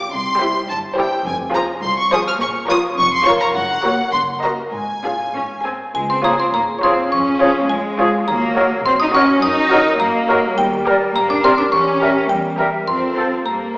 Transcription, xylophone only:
5.95 6.08 G#5 medium
6.10 6.23 C6 medium
6.24 6.38 A#5 medium
6.40 6.53 C6 medium
6.54 6.81 A#5 medium
6.83 7.10 C6 medium
7.12 7.66 C#6 medium
7.69 8.23 G#5 medium
8.28 8.82 A#5 medium
8.86 8.99 C6 medium
9.00 9.13 D#6 medium
9.15 9.41 C#6 medium
9.42 9.96 D#6 medium
10.00 10.54 A#5 medium
10.58 11.11 G5 medium
11.16 11.29 A#5 medium
11.30 11.43 D6 medium
11.44 11.58 C6 medium
11.58 11.72 D6 medium
11.72 12.26 C#6 medium
12.29 12.83 G5 medium
12.88 13.42 C6 medium
13.46 13.78 A#5 medium

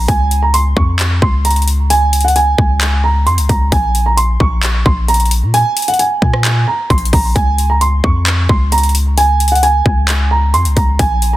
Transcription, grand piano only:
0.08 0.40 G#5 loud
0.42 0.53 A#5 medium
0.54 0.75 C6 medium
0.77 1.20 C#6 medium
1.22 1.43 C6 medium
1.45 1.66 A#5 medium
1.90 2.22 G#5 loud
2.24 2.35 F#5 medium
2.36 2.57 G#5 loud
2.59 3.01 G#5 medium
3.04 3.25 A#5 medium
3.26 3.48 C6 medium
3.49 3.71 A#5 medium
3.72 4.04 G#5 loud
4.06 4.17 A#5 medium
4.17 4.39 C6 medium
4.40 4.83 C#6 medium
4.86 5.07 C6 medium
5.08 5.30 A#5 medium
5.54 5.86 G#5 loud
5.88 5.99 F#5 medium
5.99 6.21 G#5 medium
6.22 6.65 G#5 medium
6.68 6.89 A#5 medium
6.90 7.11 C6 medium
7.13 7.34 A#5 medium
7.35 7.68 G#5 loud
7.70 7.80 A#5 medium
7.81 8.02 C6 medium
8.04 8.47 C#6 medium
8.49 8.71 C6 medium
8.72 8.93 A#5 medium
9.18 9.50 G#5 loud
9.52 9.62 F#5 medium
9.63 9.84 G#5 loud
9.86 10.28 G#5 medium
10.31 10.52 A#5 medium
10.54 10.75 C6 medium
10.76 10.98 A#5 medium
10.99 11.31 G#5 loud
11.33 11.37 A#5 medium

